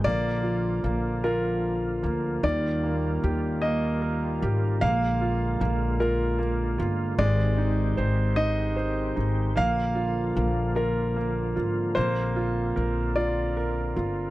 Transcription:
0.04 upright bass A#1, tonewheel organ D3 F3 A#3 F4, grand piano A#3 D5
0.43 grand piano F4
0.84 upright bass A#1, grand piano A#3
1.24 grand piano F4 A#4
2.03 upright bass D2, grand piano A#3
2.43 upright bass D#2, grand piano D#3 D5, tonewheel organ D#3 G3 A#3 F4
2.84 grand piano A#3
3.24 upright bass D#2, grand piano G4
3.62 grand piano A#3 D#5
4.02 grand piano A#4
4.42 upright bass G#1, grand piano G4
4.79 upright bass A#1, tonewheel organ D3 G#3, grand piano A#3 F5
5.21 grand piano F4
5.60 upright bass A#1, grand piano A#3
6.00 grand piano F4 A#4
6.39 grand piano A#3
6.78 upright bass G1, grand piano F4
7.18 upright bass G#1, tonewheel organ D#3 C4 G4, grand piano G#3 D5
7.58 grand piano D#4
7.97 upright bass G#1, grand piano C5
8.36 grand piano D#4 D#5
8.76 grand piano C5
9.16 upright bass G#1, grand piano D#4
9.56 upright bass A#1, tonewheel organ D3 F3 A#3 F4, grand piano A#3 F5
9.95 grand piano F4
10.36 upright bass A#1, grand piano A#3
10.75 grand piano F4 A#4
11.16 grand piano A#3
11.56 upright bass G#1, grand piano F4
11.95 upright bass A#1, grand piano A#3 C5, tonewheel organ C4
12.36 grand piano F4
12.76 upright bass A#1, grand piano A#4
13.16 grand piano F4 D5
13.57 grand piano A#4
13.96 upright bass G1, grand piano F4

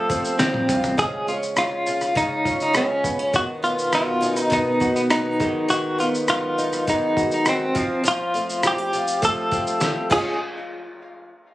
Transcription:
Already playing: twelve-string acoustic guitar F3 G3 A4, nylon-string guitar F3 A3 G4, clean electric guitar A4
0.10 twelve-string acoustic guitar C4, nylon-string guitar C4, kick, shaker
0.25 shaker
0.39 twelve-string acoustic guitar G3, clean electric guitar C4, nylon-string guitar G4, snare, shaker
0.54 high tom
0.69 nylon-string guitar C4, twelve-string acoustic guitar F4, mid tom, shaker
0.84 floor tom, shaker
0.97 twelve-string acoustic guitar C#3, nylon-string guitar G#3, clean electric guitar G#4, kick, shaker
1.27 nylon-string guitar G#3, twelve-string acoustic guitar C#4, clean electric guitar F4, shaker
1.43 shaker
1.56 twelve-string acoustic guitar G#3, nylon-string guitar F4, clean electric guitar F4, cross-stick, shaker
1.86 nylon-string guitar C#4, twelve-string acoustic guitar F4, shaker
2.01 cross-stick, shaker
2.15 twelve-string acoustic guitar C#3, nylon-string guitar G#3, clean electric guitar D#4, kick, shaker
2.45 twelve-string acoustic guitar C#4, nylon-string guitar F4, kick, shaker
2.60 clean electric guitar D#4, shaker
2.73 twelve-string acoustic guitar G#3, nylon-string guitar G#3, clean electric guitar C#4, cross-stick, shaker
3.04 nylon-string guitar B3, kick, shaker
3.19 nylon-string guitar C#4
3.33 twelve-string acoustic guitar B2, nylon-string guitar D#3, clean electric guitar F#4, kick, shaker
3.63 twelve-string acoustic guitar B3, nylon-string guitar B3, clean electric guitar F4, shaker
3.79 shaker
3.92 twelve-string acoustic guitar F#3, clean electric guitar F4, cross-stick, shaker
4.21 nylon-string guitar C#4, twelve-string acoustic guitar D#4, shaker
4.36 nylon-string guitar D#4, cross-stick, shaker
4.41 clean electric guitar D#4
4.50 twelve-string acoustic guitar B2, nylon-string guitar B3, clean electric guitar D#4, kick, shaker
4.80 twelve-string acoustic guitar B3, nylon-string guitar F#4, kick, shaker
4.96 clean electric guitar B3, shaker
5.10 twelve-string acoustic guitar F#3, nylon-string guitar B3, clean electric guitar D#4, cross-stick, shaker
5.40 twelve-string acoustic guitar G#2, nylon-string guitar D#3, kick, shaker
5.68 twelve-string acoustic guitar G#2, nylon-string guitar D#3, clean electric guitar F#4, shaker
5.99 twelve-string acoustic guitar B3, nylon-string guitar B3, clean electric guitar F4, shaker
6.14 shaker
6.28 twelve-string acoustic guitar F#3, clean electric guitar F4, cross-stick, shaker
6.58 nylon-string guitar D#4, twelve-string acoustic guitar D#4, shaker
6.73 cross-stick, shaker
6.87 twelve-string acoustic guitar G#2, nylon-string guitar B3, clean electric guitar D#4, kick, shaker
7.17 nylon-string guitar F#4, kick, shaker
7.31 clean electric guitar D#4, shaker
7.46 twelve-string acoustic guitar F#3, clean electric guitar C4, cross-stick, shaker
7.75 twelve-string acoustic guitar F3, nylon-string guitar F3, kick, shaker
8.04 twelve-string acoustic guitar F3, nylon-string guitar F3, shaker
8.08 clean electric guitar F4
8.34 nylon-string guitar A3, twelve-string acoustic guitar C4, shaker
8.50 shaker
8.63 twelve-string acoustic guitar G3, nylon-string guitar F4, cross-stick, shaker
8.67 clean electric guitar G4
8.78 nylon-string guitar G4
8.93 nylon-string guitar C4, twelve-string acoustic guitar F4, shaker
9.08 shaker
9.22 twelve-string acoustic guitar F3, nylon-string guitar A3, clean electric guitar A4, kick, shaker
9.51 twelve-string acoustic guitar C4, nylon-string guitar G4, kick, shaker
9.67 shaker
9.80 twelve-string acoustic guitar G3, nylon-string guitar A3, snare, shaker
10.10 twelve-string acoustic guitar C#3 G#3 C#4 F4 G#4, nylon-string guitar G#3 C#4 F4, clean electric guitar G#4, kick, crash

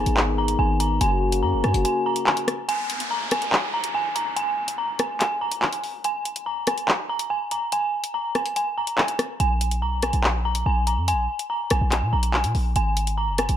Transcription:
Already playing: french horn section D#3 B3 G#4, synth bell G#5
0.06 808-style bass G#1, closed hi-hat
0.17 clap
0.38 synth bell A#5
0.48 closed hi-hat
0.59 808-style bass G#1, synth bell G#5
0.80 synth bell A#5, closed hi-hat
1.01 808-style bass F#1, french horn section C#3 A#3 F#4, synth bell G#5, closed hi-hat
1.32 closed hi-hat
1.43 808-style bass F#2, synth bell A#5
1.53 808-style bass F#1
1.64 808-style bass F#2, synth bell G#5, cross-stick, closed hi-hat
1.74 808-style bass F#1, closed hi-hat
1.85 synth bell G#5, closed hi-hat
2.06 synth bell A#5
2.16 closed hi-hat
2.27 synth bell G#5, clap
2.37 closed hi-hat
2.48 cross-stick, closed hi-hat
2.69 synth bell G#5, closed hi-hat, downlifter
2.90 closed hi-hat
3.00 closed hi-hat
3.11 synth bell A#5
3.31 synth bell G#5, cross-stick, closed hi-hat
3.42 closed hi-hat
3.53 clap
3.74 synth bell A#5
3.84 closed hi-hat
3.95 synth bell G#5
4.15 synth bell A#5, closed hi-hat
4.36 synth bell G#5, closed hi-hat
4.68 closed hi-hat
4.78 synth bell A#5
4.99 synth bell G#5, cross-stick, closed hi-hat
5.20 synth bell G#5, clap, closed hi-hat
5.41 synth bell A#5
5.52 closed hi-hat
5.62 synth bell G#5, clap
5.73 closed hi-hat
5.84 open hi-hat
6.04 synth bell G#5, closed hi-hat
6.25 closed hi-hat
6.36 closed hi-hat
6.46 synth bell A#5
6.67 synth bell G#5, cross-stick, closed hi-hat
6.78 closed hi-hat
6.88 clap
7.09 synth bell A#5
7.19 closed hi-hat
7.30 synth bell G#5
7.51 synth bell A#5, closed hi-hat
7.72 synth bell G#5, closed hi-hat
8.04 closed hi-hat
8.14 synth bell A#5
8.35 synth bell G#5, cross-stick, closed hi-hat
8.46 closed hi-hat
8.56 synth bell G#5, closed hi-hat
8.78 synth bell A#5
8.87 closed hi-hat
8.98 synth bell G#5, clap
9.08 closed hi-hat
9.19 cross-stick, closed hi-hat
9.40 808-style bass A#1, synth bell G#5, closed hi-hat
9.61 closed hi-hat
9.71 closed hi-hat
9.82 808-style bass B1, synth bell A#5
9.98 808-style bass A#1
10.02 synth bell G#5, cross-stick, closed hi-hat
10.13 808-style bass A#1, closed hi-hat
10.24 clap
10.45 synth bell A#5
10.55 closed hi-hat
10.66 808-style bass A#1, synth bell G#5
10.87 synth bell A#5, closed hi-hat
10.97 808-style bass F2
11.08 synth bell G#5, closed hi-hat
11.13 808-style bass A#1
11.39 closed hi-hat
11.50 synth bell A#5
11.70 808-style bass A#1, synth bell G#5, cross-stick, closed hi-hat
11.81 808-style bass A#1
11.92 synth bell G#5, clap, closed hi-hat
12.02 808-style bass A#2
12.13 808-style bass A#1, synth bell A#5
12.23 closed hi-hat
12.34 synth bell G#5, clap
12.44 808-style bass A#2, closed hi-hat
12.55 808-style bass A#1, open hi-hat
12.76 808-style bass G#1, synth bell G#5, closed hi-hat
12.97 closed hi-hat
13.07 closed hi-hat
13.18 synth bell A#5
13.28 808-style bass F#1
13.38 synth bell G#5, cross-stick, closed hi-hat
13.49 808-style bass G#1, closed hi-hat

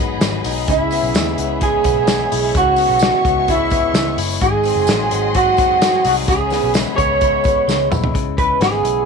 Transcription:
Already playing: picked electric bass G#1, clean electric guitar G#2 F#3 D#4, string section G#4 D#5 F#5 B5
0.00 clean electric guitar B3
0.21 picked electric bass G#1, clean electric guitar F#3, snare, hi-hat pedal, open hi-hat, tambourine
0.44 picked electric bass B1, clean electric guitar D#4, hi-hat pedal, open hi-hat, tambourine
0.68 picked electric bass C#2, clean electric guitar C#3 E4, string section C#5 E5, kick, hi-hat pedal, open hi-hat, tambourine
0.91 clean electric guitar B3, hi-hat pedal, open hi-hat, tambourine
1.03 picked electric bass B1
1.14 picked electric bass D#2, clean electric guitar G#3, snare, hi-hat pedal, open hi-hat, tambourine
1.38 picked electric bass C#2, clean electric guitar B3, hi-hat pedal, open hi-hat
1.61 clean electric guitar G#3 G#4, kick, hi-hat pedal, open hi-hat
1.84 picked electric bass B1, clean electric guitar B3, kick, hi-hat pedal, open hi-hat, tambourine
2.07 clean electric guitar G#3, snare, hi-hat pedal, open hi-hat, tambourine
2.32 picked electric bass B1, clean electric guitar E4, hi-hat pedal, open hi-hat, tambourine
2.55 picked electric bass C#2, clean electric guitar C#3 F#4, string section C#6, kick, hi-hat pedal, open hi-hat, tambourine
2.76 clean electric guitar B3, hi-hat pedal, open hi-hat, tambourine
2.90 picked electric bass B1
2.99 clean electric guitar G#3, snare, hi-hat pedal, open hi-hat, tambourine
3.25 picked electric bass C#2, clean electric guitar B3, kick, hi-hat pedal, open hi-hat
3.48 clean electric guitar G#3 E4, kick, hi-hat pedal, open hi-hat, tambourine
3.70 clean electric guitar B3, kick, hi-hat pedal, open hi-hat, tambourine
3.94 picked electric bass C#2, clean electric guitar G#3, snare, hi-hat pedal, open hi-hat, tambourine
4.17 picked electric bass F#1, clean electric guitar E4, hi-hat pedal, open hi-hat, tambourine
4.41 picked electric bass G#1, clean electric guitar G#2 G#4, string section G#4 D#5 F#5 C6, kick, hi-hat pedal, open hi-hat, tambourine
4.64 clean electric guitar C4, hi-hat pedal, open hi-hat, tambourine
4.76 picked electric bass F#1
4.87 picked electric bass A1, clean electric guitar F#3, snare, hi-hat pedal, open hi-hat, tambourine
5.11 picked electric bass G#1, clean electric guitar C4, hi-hat pedal, open hi-hat
5.35 clean electric guitar F#3 F#4, kick, hi-hat pedal, open hi-hat, tambourine
5.57 picked electric bass F#1, clean electric guitar C4, kick, hi-hat pedal, open hi-hat, tambourine
5.82 clean electric guitar F#3, snare, hi-hat pedal, open hi-hat, tambourine
6.05 picked electric bass C2, clean electric guitar D#4 F#4, hi-hat pedal, open hi-hat, tambourine
6.28 picked electric bass C#2, clean electric guitar C#3 G#4, string section C#5 E5 B5, kick, hi-hat pedal, open hi-hat, tambourine
6.50 clean electric guitar B3, snare, hi-hat pedal, open hi-hat, tambourine
6.64 picked electric bass B1
6.74 clean electric guitar G#3, snare, hi-hat pedal, open hi-hat, tambourine
6.96 picked electric bass C#2, clean electric guitar B3 C#5, kick, hi-hat pedal, open hi-hat, tambourine
7.21 clean electric guitar G#3, kick, hi-hat pedal, open hi-hat
7.44 clean electric guitar B3, kick, hi-hat pedal, open hi-hat, tambourine
7.67 picked electric bass C#2, clean electric guitar G#3, snare, tambourine
7.91 picked electric bass B1, clean electric guitar E4, mid tom, tambourine
8.04 floor tom
8.14 picked electric bass C#2, clean electric guitar C#3, kick, closed hi-hat
8.37 clean electric guitar G#3 B4, kick, closed hi-hat
8.60 picked electric bass G#1, clean electric guitar B3 G#4, snare, closed hi-hat
8.83 picked electric bass B1, clean electric guitar E4, closed hi-hat

